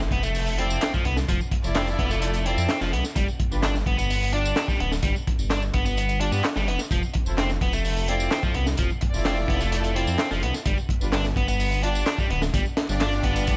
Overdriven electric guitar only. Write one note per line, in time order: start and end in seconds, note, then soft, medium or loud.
0.12 0.22 B3 medium
0.23 0.57 A3 medium
0.59 0.93 C4 medium
0.94 1.04 F3 loud
1.05 1.15 B3 medium
1.29 1.39 F3 medium
1.76 1.87 C4 medium
1.99 2.09 B3 medium
2.11 2.45 A3 medium
2.46 2.80 C4 medium
2.81 2.91 F3 loud
2.93 3.03 B3 medium
3.16 3.26 G3 medium
3.63 3.74 D4 medium
3.86 3.97 B3 medium
3.98 4.32 B3 medium
4.34 4.67 D4 medium
4.68 4.79 G3 loud
4.80 4.90 B3 medium
5.04 5.14 G3 medium
5.51 5.62 D4 medium
5.74 5.84 B3 medium
5.86 6.20 B3 medium
6.21 6.31 D4 loud
6.33 6.43 B3 loud
6.56 6.67 G3 loud
6.68 6.78 B3 loud
6.91 7.01 F3 medium
7.38 7.49 C4 medium
7.62 7.72 B3 medium
7.73 8.07 A3 medium
8.09 8.42 C4 medium
8.44 8.54 F3 loud
8.55 8.65 B3 medium
8.79 8.89 F3 medium
9.25 9.37 C4 medium
9.49 9.59 B3 medium
9.61 9.95 A3 medium
9.96 10.30 C4 medium
10.31 10.41 F3 loud
10.43 10.53 B3 medium
10.66 10.76 G3 medium
11.13 11.24 D4 medium
11.37 11.47 B3 medium
11.48 11.82 B3 medium
11.83 12.17 D4 medium
12.19 12.29 G3 loud
12.31 12.41 B3 medium
12.54 12.64 G3 medium
13.01 13.12 D4 medium
13.24 13.34 B3 medium
13.36 13.57 B3 medium